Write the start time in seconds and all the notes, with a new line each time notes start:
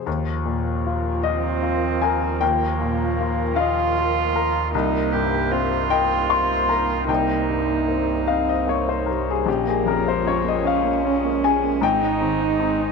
0.05 D#2 F3 A#3 F4 A#4
0.46 A#2
0.86 F4
1.23 C4 D#5
1.62 F4
2.02 A#4 G#5
2.41 D#2 A#3 G5
2.81 A#2
3.20 F4
3.56 F4 D#5 F5
3.98 F4
4.36 A#4
4.74 C2 A#3 D#4 C5
5.12 G2 G4
5.52 C4 F4
5.90 A#3 D#5 G5
6.29 C4 C6
6.69 A#4 A#5
7.08 C2 A#3 D#4 G5
7.48 G2
7.89 C4
8.27 C4 D#5 F5
8.49 D#5
8.68 A#3 C4 C#5
8.89 C5
9.06 G3 A#4
9.31 G#4
9.46 A#1 G#3 A#3 C#4 F4 G4 C#5
9.67 A#3 G#4
9.86 F2 C#4 A#4
10.05 A#3 C5
10.25 C#4 C#5
10.44 A#3
10.48 D#5
10.65 C#4 C#5 F5
10.84 A#3
11.05 C#4
11.25 A#3
11.44 C#4 G#4 G#5
11.64 A#3
11.81 G#1 G#2 C4 D#4 C5 G5
12.02 D#4
12.21 D#3 C4
12.41 D#4
12.60 C4 D#4
12.80 D#4